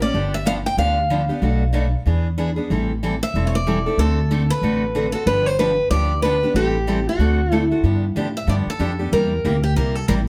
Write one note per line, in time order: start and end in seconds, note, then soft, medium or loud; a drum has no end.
0.00 0.14 A#3 soft
0.00 0.14 C#4 medium
0.00 0.13 G4 medium
0.00 0.31 D5 medium
0.14 0.65 G1 medium
0.14 0.34 D3 medium
0.14 0.34 F3 medium
0.14 0.34 B3 medium
0.14 0.34 D4 medium
0.14 0.34 G4 medium
0.34 0.46 E5 medium
0.45 0.57 D3 medium
0.45 0.57 F3 medium
0.45 0.57 B3 medium
0.45 0.57 D4 medium
0.45 0.57 G4 medium
0.45 0.52 F5 loud
0.66 0.78 G5 medium
0.77 1.29 D2 medium
0.77 0.98 D3 medium
0.77 0.98 F3 medium
0.77 0.98 B3 medium
0.77 0.98 D4 medium
0.77 0.98 G4 medium
0.77 2.03 F5 medium
1.10 1.21 D3 medium
1.10 1.21 F3 medium
1.10 1.21 B3 medium
1.10 1.21 D4 medium
1.10 1.21 G4 medium
1.29 1.42 B3 soft
1.29 1.42 D4 medium
1.29 1.42 G4 medium
1.42 1.93 B1 medium
1.42 1.62 B2 medium
1.42 1.62 F#3 medium
1.42 1.62 A3 medium
1.42 1.63 D4 medium
1.42 1.63 F#4 medium
1.73 1.84 B2 medium
1.73 1.85 F#3 medium
1.73 1.85 A3 medium
1.73 1.85 D4 loud
1.73 1.85 F#4 medium
2.06 2.57 E2 medium
2.06 2.26 E3 medium
2.06 2.26 B3 medium
2.06 2.27 D4 medium
2.06 2.27 G#4 medium
2.38 2.49 E3 medium
2.38 2.49 B3 medium
2.38 2.49 D4 medium
2.38 2.49 G#4 medium
2.56 2.70 B3 soft
2.56 2.70 D4 soft
2.56 2.69 G#4 medium
2.70 3.22 A1 medium
2.70 2.90 E3 medium
2.70 2.91 G3 medium
2.70 2.91 C4 medium
2.70 2.91 E4 medium
2.70 2.91 A4 medium
3.03 3.13 E3 medium
3.03 3.14 G3 medium
3.03 3.14 C4 medium
3.03 3.14 E4 medium
3.03 3.14 A4 medium
3.23 3.47 E5 loud
3.34 3.85 E1 medium
3.34 3.55 E3 medium
3.34 3.55 G3 medium
3.34 3.55 C4 medium
3.34 3.55 E4 medium
3.34 3.55 A4 medium
3.47 3.54 C#5 medium
3.55 4.01 D5 loud
3.67 3.77 E3 medium
3.67 3.78 G3 medium
3.67 3.78 C4 medium
3.67 3.78 E4 medium
3.67 3.78 A4 medium
3.86 3.98 C4 soft
3.86 3.99 E4 medium
3.86 3.98 A4 medium
3.98 4.49 D2 medium
3.98 4.19 D3 medium
3.98 4.19 A3 medium
3.98 4.19 C4 medium
3.98 4.19 F#4 medium
3.98 4.52 A4 loud
3.98 4.19 A4 medium
4.31 4.41 D3 medium
4.31 4.42 A3 medium
4.31 4.42 C4 medium
4.31 4.42 F#4 medium
4.31 4.42 A4 medium
4.50 5.10 B4 medium
4.62 5.13 A1 medium
4.62 4.83 D3 medium
4.62 4.83 A3 medium
4.62 4.83 C4 medium
4.62 4.83 F#4 medium
4.62 4.83 A4 medium
4.95 5.06 D3 medium
4.95 5.06 A3 medium
4.95 5.06 C4 medium
4.95 5.06 F#4 medium
4.95 5.06 A4 medium
5.12 5.27 C4 soft
5.12 5.27 F#4 medium
5.12 5.26 A4 medium
5.26 5.78 G1 medium
5.26 5.47 D3 medium
5.26 5.47 F3 medium
5.26 5.47 B3 medium
5.26 5.47 D4 medium
5.26 5.47 G4 medium
5.26 5.46 B4 medium
5.46 5.59 C5 medium
5.59 5.70 D3 medium
5.59 5.70 F3 medium
5.59 5.70 B3 medium
5.59 5.70 D4 medium
5.59 5.70 G4 medium
5.59 5.90 B4 medium
5.90 6.42 D2 medium
5.90 6.11 D3 medium
5.90 6.11 F3 medium
5.90 6.12 B3 medium
5.90 6.12 D4 medium
5.90 6.12 G4 medium
5.90 6.22 D5 medium
6.22 6.34 D3 medium
6.22 6.34 F3 medium
6.22 6.35 B3 medium
6.22 6.35 D4 loud
6.22 6.35 G4 medium
6.22 6.52 B4 medium
6.43 6.55 B3 soft
6.43 6.55 D4 medium
6.43 6.55 G4 medium
6.54 7.06 A1 medium
6.54 6.75 E3 medium
6.54 6.75 G3 medium
6.54 6.75 C4 medium
6.54 6.76 E4 medium
6.54 7.08 G4 medium
6.54 6.76 A4 medium
6.87 6.98 E3 medium
6.87 6.98 G3 medium
6.87 6.98 C4 medium
6.87 6.99 E4 medium
6.87 6.99 A4 medium
7.09 7.54 F#4 medium
7.19 7.70 D2 medium
7.19 7.39 D3 medium
7.19 7.39 A3 medium
7.19 7.40 C4 medium
7.19 7.40 F#4 medium
7.19 7.40 A4 medium
7.52 7.62 D3 medium
7.52 7.62 A3 medium
7.52 7.63 C4 medium
7.52 7.68 E4 medium
7.52 7.63 F#4 medium
7.52 7.63 A4 medium
7.71 7.84 C4 soft
7.71 7.84 F#4 medium
7.71 7.83 A4 medium
7.83 8.14 G2 medium
7.83 8.03 D3 medium
7.83 8.04 F3 medium
7.83 8.04 B3 medium
7.83 8.04 D4 medium
7.83 8.04 G4 medium
8.15 8.47 A2 medium
8.15 8.26 D3 medium
8.15 8.27 F3 medium
8.15 8.27 B3 medium
8.15 8.27 D4 medium
8.15 8.27 G4 loud
8.37 8.49 E5 medium
8.47 8.65 G2 medium
8.47 8.67 D3 medium
8.47 8.68 F3 medium
8.47 8.68 B3 medium
8.47 8.68 D4 medium
8.47 8.68 G4 medium
8.47 8.54 D5 medium
8.67 9.12 A4 medium
8.67 muted upright bass stroke soft
8.79 9.11 F2 medium
8.79 8.90 D3 medium
8.79 8.90 F3 medium
8.79 8.90 B3 medium
8.79 8.91 D4 loud
8.79 8.91 G4 medium
8.99 9.12 B3 soft
8.99 9.12 D4 soft
8.99 9.11 G4 medium
9.12 9.43 E2 medium
9.12 9.32 C3 medium
9.12 9.32 G3 medium
9.12 9.32 A#3 medium
9.12 9.32 E4 medium
9.12 9.33 G4 medium
9.12 9.63 A#4 medium
9.45 9.75 D2 medium
9.45 9.55 C3 medium
9.45 9.55 G3 medium
9.45 9.55 A#3 medium
9.45 9.55 E4 medium
9.45 9.55 G4 medium
9.63 9.76 G4 medium
9.76 10.07 C2 medium
9.76 9.96 C3 medium
9.76 9.97 G3 medium
9.76 9.97 A#3 medium
9.76 9.97 E4 medium
9.76 9.97 G4 medium
9.76 9.95 A#4 medium
9.95 10.08 A4 medium
10.08 10.28 A1 medium
10.08 10.19 C3 medium
10.08 10.19 G3 medium
10.08 10.19 A#3 medium
10.08 10.19 E4 medium
10.08 10.19 G4 medium
10.08 10.13 A#4 medium